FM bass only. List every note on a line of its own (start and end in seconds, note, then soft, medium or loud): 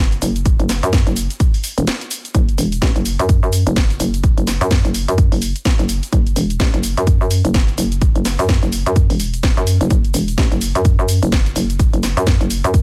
0.00 0.20 F#1 loud
0.22 0.57 F#1 loud
0.60 0.81 F#1 loud
0.83 1.05 F#2 loud
1.07 1.28 F#1 loud
1.78 1.86 E1 loud
2.35 2.57 F#1 loud
2.58 2.80 E1 loud
2.82 2.94 A1 loud
2.96 3.17 F#1 loud
3.19 3.41 F#2 loud
3.43 3.64 F#2 medium
3.67 3.98 F#1 loud
4.00 4.35 F#1 loud
4.38 4.59 F#1 loud
4.61 4.83 F#2 loud
4.85 5.06 F#1 medium
5.08 5.30 F#2 medium
5.32 5.53 F#1 loud
5.79 6.01 F#1 loud
6.13 6.35 F#1 loud
6.36 6.58 E1 loud
6.60 6.72 A1 loud
6.74 6.95 F#1 loud
6.97 7.19 F#2 loud
7.21 7.42 F#2 medium
7.45 7.76 F#1 loud
7.78 8.13 F#1 medium
8.16 8.37 F#1 medium
8.39 8.60 F#2 medium
8.63 8.84 F#1 loud
8.86 9.08 F#2 loud
9.10 9.55 E1 medium
9.57 9.79 F#2 loud
9.81 9.89 F#1 loud
9.90 10.13 F#1 medium
10.14 10.36 E1 loud
10.38 10.49 A1 loud
10.52 10.73 F#1 loud
10.75 10.97 F#2 loud
10.99 11.20 F#2 loud
11.23 11.54 F#1 loud
11.56 11.91 F#1 medium
11.93 12.15 F#1 loud
12.17 12.38 F#2 loud
12.41 12.62 F#1 loud
12.64 12.82 F#2 loud